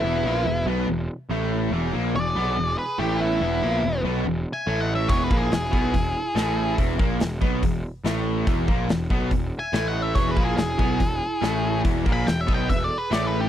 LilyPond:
<<
  \new Staff \with { instrumentName = "Lead electric guitar" } { \time 4/4 \key e \major \tempo 4 = 142 e'4. r2 r8 | r4 d''4. b'8 g'8 e'8~ | e'4. r8 \tuplet 3/2 { r4 gis''8~ gis''8 fis''8 e''8 } | \tuplet 3/2 { cis''8 b'8 gis'8 } gis'2. |
r1 | r2 \tuplet 3/2 { r4 gis''8~ gis''8 fis''8 e''8 } | \tuplet 3/2 { cis''8 b'8 gis'8 } gis'2. | \tuplet 3/2 { r4 b''8 g''8 e''8 g''8 e''8 d''8 b'8 d''8 b'8 g'8 } | }
  \new Staff \with { instrumentName = "Lead electric guitar" } { \time 4/4 \key e \major b4. r2 r8 | r4 gis'4. gis'8 e'8 b8~ | b4. r8 \tuplet 3/2 { r4 e''8~ e''8 dis''8 cis''8 } | \tuplet 3/2 { gis'8 gis'8 e'8 } e'2. |
r1 | r2 \tuplet 3/2 { r4 e''8~ e''8 dis''8 cis''8 } | \tuplet 3/2 { gis'8 gis'8 e'8 } e'2. | \tuplet 3/2 { r4 gis''8 e''8 cis''8 dis''8 b'8 a'8 gis'8 gis'8 gis'8 dis'8 } | }
  \new Staff \with { instrumentName = "Overdriven electric guitar" } { \clef bass \time 4/4 \key e \major <e, e>8 <ais, ais>8 e,8 <b, b>8 e,8 r8 <a, a>4 | <e, e>8 <ais, ais>8 e,8 <b, b>8 e,8 r8 <a, a>4 | <e, e>8 <ais, ais>8 e,8 <b, b>8 e,8 r8 <a, a>4 | <e, e>8 <ais, ais>8 e,8 <b, b>8 e,8 r8 <a, a>4 |
<e, e>8 <ais, ais>8 e,8 <b, b>8 e,8 r8 <a, a>4 | <e, e>8 <ais, ais>8 e,8 <b, b>8 e,8 r8 <a, a>4 | <e, e>8 <ais, ais>8 e,8 <b, b>8 e,8 r8 <a, a>4 | <e, e>8 <ais, ais>8 e,8 <b, b>8 e,8 r8 <a, a>4 | }
  \new Staff \with { instrumentName = "Picked electric bass" } { \clef bass \time 4/4 \key e \major e,,8 ais,,8 e,,8 b,,8 e,,8 r8 a,,4 | e,,8 ais,,8 e,,8 b,,8 e,,8 r8 a,,4 | e,,8 ais,,8 e,,8 b,,8 e,,8 r8 a,,4 | e,,8 ais,,8 e,,8 b,,8 e,,8 r8 a,,4 |
e,,8 ais,,8 e,,8 b,,8 e,,8 r8 a,,4 | e,,8 ais,,8 e,,8 b,,8 e,,8 r8 a,,4 | e,,8 ais,,8 e,,8 b,,8 e,,8 r8 a,,4 | e,,8 ais,,8 e,,8 b,,8 e,,8 r8 a,,4 | }
  \new DrumStaff \with { instrumentName = "Drums" } \drummode { \time 4/4 r4 r4 r4 r4 | r4 r4 r4 r4 | r4 r4 r4 r4 | <hho bd>8 bd8 <hho sn>8 bd8 <hho bd>4 <hho sn>4 |
<hho bd>8 bd8 <hho sn>8 bd8 <hho bd>4 <hho sn>4 | <hho bd>8 bd8 <hho sn>8 bd8 <hho bd>4 <hho sn>4 | <hho bd>8 bd8 <hho sn>8 bd8 <hho bd>4 <hho sn>4 | <hho bd>8 bd8 <hho sn>8 bd8 <hho bd>4 <hho sn>4 | }
>>